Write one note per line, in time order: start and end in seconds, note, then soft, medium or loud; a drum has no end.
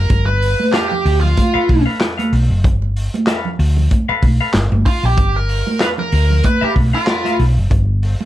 0.00 0.26 A#4 medium
0.10 0.53 G1 loud
0.10 kick loud
0.10 closed hi-hat loud
0.10 muted conga soft
0.10 low conga medium
0.26 0.74 B4 loud
0.26 muted conga soft
0.42 open hi-hat medium
0.60 high conga medium
0.71 0.88 G4 medium
0.71 0.93 A4 medium
0.71 0.93 B4 medium
0.71 0.93 F5 medium
0.71 snare loud
0.71 clap medium
0.71 closed hi-hat loud
0.89 1.21 G4 medium
0.89 muted conga soft
0.89 low conga medium
1.05 1.33 D2 medium
1.05 open hi-hat medium
1.21 1.82 F4 medium
1.21 low conga medium
1.37 kick medium
1.37 closed hi-hat medium
1.37 muted conga soft
1.37 high conga medium
1.54 1.71 A4 medium
1.54 1.71 B4 medium
1.54 1.70 F5 medium
1.54 muted fingered electric bass stroke soft
1.54 muted conga soft
1.69 1.85 B1 medium
1.69 kick medium
1.69 open hi-hat medium
1.69 high conga medium
1.86 1.98 A4 soft
1.86 1.99 B4 medium
1.86 1.98 F5 medium
1.99 2.15 A4 medium
1.99 2.16 B4 medium
1.99 2.16 G5 medium
1.99 snare loud
1.99 clap medium
1.99 closed hi-hat medium
1.99 muted conga soft
2.18 2.34 A4 medium
2.18 2.34 B4 medium
2.18 2.34 F5 medium
2.18 closed hi-hat medium
2.18 muted conga soft
2.18 high conga medium
2.33 2.48 B1 medium
2.33 open hi-hat medium
2.49 2.64 F#1 medium
2.64 3.07 G1 loud
2.64 kick loud
2.64 closed hi-hat medium
2.64 muted conga soft
2.64 low conga medium
2.82 muted conga soft
2.96 open hi-hat medium
3.14 closed hi-hat medium
3.14 high conga medium
3.27 3.48 A4 medium
3.27 3.49 B4 medium
3.27 3.49 F5 loud
3.27 snare loud
3.27 clap medium
3.27 closed hi-hat loud
3.27 muted conga soft
3.45 low conga medium
3.59 3.87 D2 loud
3.59 open hi-hat medium
3.77 low conga medium
3.91 kick medium
3.91 closed hi-hat medium
3.91 high conga medium
4.09 4.25 A4 medium
4.09 4.24 B4 medium
4.09 4.24 F5 medium
4.09 muted fingered electric bass stroke soft
4.09 muted conga soft
4.22 4.38 B1 medium
4.22 kick medium
4.22 open hi-hat medium
4.22 high conga medium
4.41 4.53 A4 medium
4.41 4.53 B4 medium
4.41 4.52 F5 medium
4.54 4.70 G1 medium
4.54 snare loud
4.54 clap medium
4.54 closed hi-hat medium
4.54 muted conga soft
4.72 4.84 G1 medium
4.72 muted conga soft
4.72 high conga medium
4.86 5.05 F4 medium
4.86 kick medium
4.86 open hi-hat medium
5.03 5.16 A#1 medium
5.03 5.37 G4 medium
5.17 5.61 G1 loud
5.17 kick loud
5.17 closed hi-hat medium
5.17 muted conga soft
5.17 low conga medium
5.36 5.82 A#4 loud
5.49 open hi-hat medium
5.67 high conga medium
5.81 6.00 A4 medium
5.81 6.00 B4 medium
5.81 5.88 B4 medium
5.81 6.01 F5 medium
5.81 snare loud
5.81 clap medium
5.81 closed hi-hat medium
5.81 muted conga soft
5.98 6.45 A#4 medium
5.98 muted conga soft
5.98 low conga medium
6.12 6.40 D2 loud
6.12 open hi-hat medium
6.30 low conga medium
6.44 6.63 B4 loud
6.44 kick medium
6.44 closed hi-hat medium
6.44 high conga medium
6.61 6.72 G4 medium
6.61 6.81 A4 medium
6.61 6.81 B4 medium
6.61 6.80 F5 medium
6.61 muted fingered electric bass stroke soft
6.61 muted conga soft
6.76 6.91 B1 medium
6.76 kick medium
6.76 open hi-hat medium
6.76 high conga medium
6.93 7.37 F4 medium
6.93 7.06 A4 medium
6.93 7.06 B4 medium
6.93 7.06 F5 medium
7.07 7.23 A4 medium
7.07 7.23 B4 medium
7.07 7.23 G5 medium
7.07 snare loud
7.07 clap medium
7.07 closed hi-hat medium
7.25 7.44 A4 medium
7.25 7.44 B4 medium
7.25 7.44 F5 medium
7.25 closed hi-hat medium
7.25 high conga medium
7.39 7.55 B1 medium
7.39 open hi-hat medium
7.57 7.69 F#1 medium
7.70 8.14 G1 loud
7.70 kick loud
7.70 closed hi-hat loud
7.70 low conga medium
8.03 open hi-hat medium
8.21 high conga medium